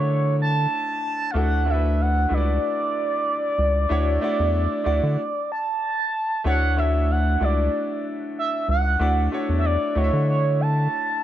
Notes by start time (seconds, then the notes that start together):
Already playing: D3 A3 D4 E4 F#4 A#4 B4 C#5
0.42 A5
1.31 A3 D4 F5
1.35 D2 E4 F#4 A4 F#5
1.65 A3 D4 E4 F#4 A4
1.70 B4 E5
2.01 F#5
2.29 C#2 A3 D4 E4 F#4 B4
2.34 D5
3.59 C#2
3.89 D2 A3 D4 E4 F#4 C#5
4.21 A3 D4 E4 F#4 D5
4.40 E2
4.84 D2 A3 D4 E4 F#4 D5
5.03 D3
5.52 A5
6.44 D2 A3 D4 E4 F#4 C#5 F#5
6.77 A3 D4 E4 F#4 E5
7.11 F#5
7.40 C#2 A3 D4 E4 F#4 D5
7.44 D5
8.39 E5
8.69 C#2 F#5
8.99 D2 A3 D4 E4 F#4 D5
9.32 A3 D4 E4 F#4 C#5
9.49 E2
9.59 E5
9.66 D5
9.95 D2 A3 D4 E4 F#4 C#5 D#5
10.04 E5
10.13 D3
10.29 C#5
10.61 A5